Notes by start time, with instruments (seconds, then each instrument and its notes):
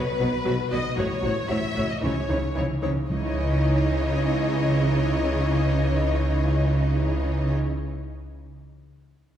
Already playing: violin section B4
0.20 double bass section B1, cello section B2, viola section F#3 F#4, violin section B4
0.45 double bass section B1, cello section B2, viola section F#3 F#4, violin section B4
0.71 double bass section B1, cello section B2, viola section F#3 F#4, violin section B4 D#5
0.97 double bass section A1, cello section A2, viola section F#3 F#4, violin section C#5
1.23 double bass section A1, cello section A2, viola section F#3 F#4, violin section C#5
1.48 double bass section A1, cello section A2, viola section F#3 F#4, violin section C#5 E5
1.75 double bass section A1, cello section A2, viola section F#3 F#4, violin section C#5
1.89 violin section D#5
2.02 double bass section C#2, cello section C#3, viola section E3 D#4, violin section C#5
2.29 double bass section C#2, cello section C#3, viola section E3 D#4, violin section C#5
2.56 double bass section C#2, cello section C#3, viola section E3 D#4, violin section C#5
2.82 double bass section C#2, cello section C#3, viola section E3 D#4, violin section C#5
3.09 double bass section C#2, timpani C#3, cello section C#3, viola section E3 D#4, violin section C#5 D#5